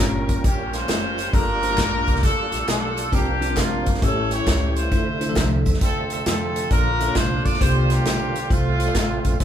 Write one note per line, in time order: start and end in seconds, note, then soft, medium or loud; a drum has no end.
0.00 0.24 G1 loud
0.00 0.25 A#2 medium
0.00 0.40 G3 medium
0.00 1.30 G3 medium
0.00 0.40 A#3 medium
0.00 1.30 A#3 medium
0.00 0.40 C#4 medium
0.00 0.43 C#4 medium
0.00 1.30 C#4 medium
0.00 0.41 F4 medium
0.00 1.30 F4 medium
0.00 0.40 G4 medium
0.00 0.41 A#4 medium
0.00 0.44 A#4 medium
0.00 1.30 A#4 medium
0.29 0.42 A1 medium
0.29 kick loud
0.29 closed hi-hat medium
0.29 tambourine medium
0.44 0.82 A#1 loud
0.44 1.30 C#4 medium
0.44 0.72 G4 medium
0.44 kick loud
0.44 closed hi-hat loud
0.44 tambourine medium
0.73 1.30 F4 medium
0.73 1.29 G4 medium
0.73 1.33 C5 loud
0.73 snare soft
0.73 closed hi-hat medium
0.73 tambourine medium
0.88 1.26 F#1 loud
0.88 snare loud
0.88 clap medium
0.88 closed hi-hat medium
0.88 tambourine medium
1.18 closed hi-hat medium
1.18 tambourine medium
1.33 1.78 G1 loud
1.33 2.04 G2 medium
1.33 1.50 G3 medium
1.33 3.09 G3 medium
1.33 3.09 A#3 medium
1.33 1.50 A#3 medium
1.33 3.09 D4 medium
1.33 1.50 D4 medium
1.33 2.19 D4 medium
1.33 3.09 F4 medium
1.33 1.50 F4 medium
1.33 2.19 F4 medium
1.33 3.09 G4 medium
1.33 1.50 A4 loud
1.33 2.23 A#4 loud
1.33 kick loud
1.33 closed hi-hat medium
1.33 tambourine medium
1.62 1.67 G3 medium
1.62 1.67 A#3 medium
1.62 1.67 D4 medium
1.62 1.67 F4 medium
1.62 1.67 C5 medium
1.62 closed hi-hat medium
1.62 tambourine medium
1.70 2.19 G3 medium
1.70 2.19 A#3 medium
1.70 2.19 D4 medium
1.70 2.19 F4 medium
1.70 2.19 A5 medium
1.77 2.03 A#1 loud
1.77 kick medium
1.77 snare loud
1.77 clap loud
1.77 closed hi-hat medium
1.77 tambourine medium
2.07 2.21 C2 loud
2.07 kick medium
2.07 closed hi-hat medium
2.07 tambourine medium
2.15 snare soft
2.23 2.48 D2 loud
2.23 2.67 D4 medium
2.23 2.67 F4 medium
2.23 2.65 A4 loud
2.23 kick loud
2.23 closed hi-hat loud
2.23 tambourine medium
2.52 2.65 A#1 medium
2.52 snare soft
2.52 closed hi-hat medium
2.52 tambourine medium
2.68 3.06 B1 loud
2.68 3.10 D4 medium
2.68 3.10 F4 medium
2.68 3.10 A4 medium
2.68 snare loud
2.68 clap loud
2.68 closed hi-hat medium
2.68 tambourine medium
2.97 closed hi-hat medium
2.97 tambourine medium
3.12 3.57 C2 loud
3.12 3.83 C3 medium
3.12 4.00 F3 medium
3.12 3.29 G3 medium
3.12 4.00 A#3 medium
3.12 3.57 A#3 medium
3.12 3.29 C4 medium
3.12 4.00 C4 medium
3.12 3.29 D4 medium
3.12 4.00 D4 medium
3.12 3.57 D4 medium
3.12 3.29 F4 medium
3.12 3.57 G4 loud
3.12 4.00 G4 medium
3.12 3.29 A#4 loud
3.12 kick loud
3.12 closed hi-hat medium
3.12 tambourine medium
3.41 3.46 G3 medium
3.41 3.46 C4 medium
3.41 3.46 D4 medium
3.41 3.46 F4 medium
3.41 3.46 G4 medium
3.41 closed hi-hat medium
3.41 tambourine medium
3.49 3.98 G3 medium
3.49 3.98 C4 medium
3.49 3.98 D4 medium
3.49 3.98 F4 medium
3.49 3.99 A#4 medium
3.56 3.82 A#1 loud
3.56 3.99 A#3 medium
3.56 3.99 D4 medium
3.56 4.02 F4 medium
3.56 kick medium
3.56 snare loud
3.56 clap loud
3.56 closed hi-hat medium
3.56 tambourine loud
3.86 4.00 G1 medium
3.86 kick loud
3.86 closed hi-hat medium
3.86 tambourine medium
3.94 snare soft
4.01 4.40 A1 loud
4.01 4.72 A2 medium
4.01 4.91 E3 medium
4.01 4.90 G3 medium
4.01 4.79 A3 medium
4.01 4.90 A3 medium
4.01 4.79 C#4 medium
4.01 4.88 C#4 medium
4.01 4.91 C#4 medium
4.01 4.80 E4 medium
4.01 4.30 E4 medium
4.01 4.80 G4 medium
4.01 4.90 G4 medium
4.01 4.32 A4 loud
4.01 4.10 A#4 medium
4.01 kick loud
4.01 closed hi-hat loud
4.01 tambourine medium
4.08 4.82 C#5 medium
4.31 4.75 E4 medium
4.31 4.88 G4 medium
4.31 4.73 C#5 loud
4.31 closed hi-hat medium
4.31 tambourine medium
4.47 4.85 C#2 loud
4.47 kick medium
4.47 snare loud
4.47 clap medium
4.47 closed hi-hat medium
4.47 tambourine medium
4.76 5.62 E4 medium
4.76 5.62 F4 medium
4.76 5.60 C5 medium
4.76 closed hi-hat medium
4.76 tambourine medium
4.91 5.30 D2 loud
4.91 6.68 C3 medium
4.91 5.62 D3 medium
4.91 6.68 D3 medium
4.91 5.08 A3 medium
4.91 6.68 A3 medium
4.91 6.68 C4 medium
4.91 5.08 D4 medium
4.91 5.09 E4 medium
4.91 5.09 F4 medium
4.91 5.09 C5 loud
4.91 6.68 E5 medium
4.91 kick loud
4.91 closed hi-hat medium
4.91 tambourine medium
5.20 5.25 A3 medium
5.20 5.25 D4 medium
5.20 5.25 E4 medium
5.20 5.25 F4 medium
5.20 5.26 C5 medium
5.20 closed hi-hat medium
5.20 tambourine medium
5.28 5.78 F3 medium
5.28 5.78 A3 medium
5.28 5.78 D4 medium
5.28 5.78 A4 loud
5.28 5.78 E5 medium
5.36 5.62 C2 loud
5.36 kick medium
5.36 snare loud
5.36 clap loud
5.36 closed hi-hat medium
5.36 tambourine loud
5.66 5.79 D2 loud
5.66 kick loud
5.66 closed hi-hat medium
5.66 tambourine medium
5.74 snare soft
5.81 6.20 E2 loud
5.81 6.24 C4 medium
5.81 6.25 F4 medium
5.81 6.09 A4 medium
5.81 kick loud
5.81 closed hi-hat loud
5.81 tambourine medium
6.10 6.24 A4 medium
6.10 closed hi-hat medium
6.10 tambourine medium
6.25 6.64 F2 medium
6.25 6.67 C4 medium
6.25 6.68 F4 medium
6.25 6.68 A4 loud
6.25 snare loud
6.25 clap loud
6.25 closed hi-hat loud
6.25 tambourine medium
6.56 closed hi-hat medium
6.56 tambourine medium
6.71 7.09 A#1 loud
6.71 7.41 A#2 medium
6.71 7.59 D3 medium
6.71 7.59 F3 medium
6.71 6.88 A#3 medium
6.71 7.59 A#3 medium
6.71 6.88 D4 medium
6.71 7.57 D4 medium
6.71 7.59 F4 medium
6.71 6.88 F4 medium
6.71 7.57 F4 medium
6.71 6.88 A4 medium
6.71 7.16 A#4 loud
6.71 6.88 D5 loud
6.71 kick loud
6.71 closed hi-hat medium
6.71 tambourine medium
7.00 7.05 A#3 medium
7.00 7.05 D4 medium
7.00 7.05 F4 medium
7.00 7.05 A4 medium
7.00 7.05 E5 medium
7.00 closed hi-hat medium
7.00 tambourine medium
7.07 7.57 A#3 medium
7.07 7.57 D4 medium
7.07 7.57 F4 medium
7.07 7.57 A4 medium
7.07 7.12 C#5 medium
7.14 7.41 C2 loud
7.14 7.45 C5 loud
7.14 7.60 D5 medium
7.14 kick loud
7.14 snare loud
7.14 clap loud
7.14 closed hi-hat medium
7.14 tambourine loud
7.45 7.59 A#1 medium
7.45 7.61 D5 loud
7.45 kick loud
7.45 closed hi-hat medium
7.45 tambourine medium
7.53 snare soft
7.60 7.99 C2 loud
7.60 8.31 C3 medium
7.60 8.49 D3 medium
7.60 8.49 G3 medium
7.60 8.38 A#3 medium
7.60 8.49 A#3 medium
7.60 8.49 C4 medium
7.60 8.38 D4 medium
7.60 8.38 F4 medium
7.60 8.49 F4 medium
7.60 8.47 F4 medium
7.60 8.38 G4 medium
7.60 7.89 G4 medium
7.60 8.38 C5 loud
7.60 7.91 C5 loud
7.60 kick loud
7.60 closed hi-hat loud
7.60 tambourine medium
7.90 8.47 A#3 medium
7.90 8.47 D4 medium
7.90 8.51 G4 loud
7.90 snare soft
7.90 closed hi-hat medium
7.90 tambourine medium
8.05 8.44 B1 medium
8.05 snare loud
8.05 clap medium
8.05 closed hi-hat medium
8.05 tambourine medium
8.35 closed hi-hat medium
8.35 tambourine medium
8.50 8.89 C2 loud
8.50 9.21 C3 medium
8.50 9.38 A3 medium
8.50 9.37 A3 medium
8.50 9.38 C4 medium
8.50 9.37 C4 medium
8.50 8.57 E4 medium
8.50 8.67 F4 medium
8.50 9.36 F4 loud
8.50 8.67 A4 medium
8.50 8.67 C5 medium
8.50 kick loud
8.50 closed hi-hat medium
8.50 tambourine medium
8.56 9.41 F4 medium
8.79 8.84 F4 medium
8.79 8.84 A4 medium
8.79 8.84 C5 medium
8.79 closed hi-hat medium
8.79 tambourine medium
8.87 9.36 F4 medium
8.87 9.36 A4 medium
8.87 9.37 D5 medium
8.95 9.20 A1 loud
8.95 kick loud
8.95 snare loud
8.95 clap loud
8.95 closed hi-hat medium
8.95 tambourine loud
9.25 9.38 A#1 loud
9.25 kick loud
9.25 closed hi-hat medium
9.25 tambourine medium
9.40 9.44 C2 loud
9.40 9.44 C3 medium
9.40 9.44 E3 medium
9.40 9.44 A#3 medium
9.40 9.44 C4 medium
9.40 9.44 D4 medium
9.40 9.44 E4 medium
9.40 9.44 A4 medium
9.40 9.44 C5 loud
9.40 kick loud
9.40 closed hi-hat loud